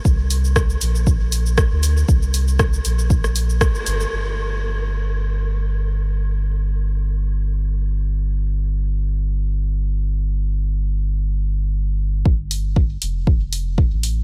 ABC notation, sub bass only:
X:1
M:4/4
L:1/16
Q:"Swing 16ths" 1/4=118
K:Gm
V:1 name="Sub bass" clef=bass
C,,6 B,,,6- B,,, D,,3 | C,,6 B,,,6- B,,, z G,,, z | G,,,16- | G,,,16- |
G,,,16- | G,,,16 | G,,,6 F,,,6- F,,, A,,,3 |]